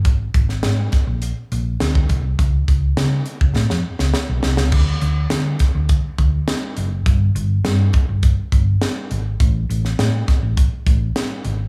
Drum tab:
CC |----------------|----------------|x---------------|----------------|
HH |x-x-x-x-x-x-x-x-|x-x-x-x---------|--x-x-x-x-x-x-x-|x-x-x-x-x-x-x-x-|
SD |---oo-o-----o---|----o---oo-oo-oo|----o-o-----o---|----o-------o---|
BD |o-o---o------oo-|o-o----o--------|o-----o-o-o-----|o-----o-o-o-----|

CC |----------------|
HH |x-x-x-x-x-x-x-x-|
SD |---oo-o-----o---|
BD |o-----o-o-o-----|